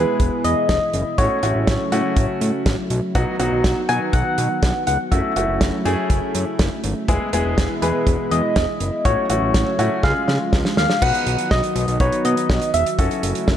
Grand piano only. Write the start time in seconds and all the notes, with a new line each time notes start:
Already playing: G#3 B3 E4 G#4
1.18 A3 C#4 E4 F#4
1.43 A3 C#4 E4 F#4
1.92 A3 C#4 E4 F#4
3.15 F#3 B3 D#4 F#4
3.39 F#3 B3 D#4 F#4
3.89 F#3 B3 D#4 F#4
5.12 A3 C#4 E4 F#4
5.36 A3 C#4 E4 F#4
5.85 A3 C#4 E4 G#4
7.08 G#3 B3 E4 G#4
7.33 G#3 B3 E4 G#4
7.82 G#3 B3 E4 G#4
9.05 A3 C#4 E4 F#4
9.30 A3 C#4 E4 F#4
9.79 A3 C#4 E4 F#4
10.04 G#3 C#4 F4 G#4
11.02 B3 D#4 F#4 B4
12.00 B3 D#4 F#4 B4
12.99 C#4 E4 F#4 A4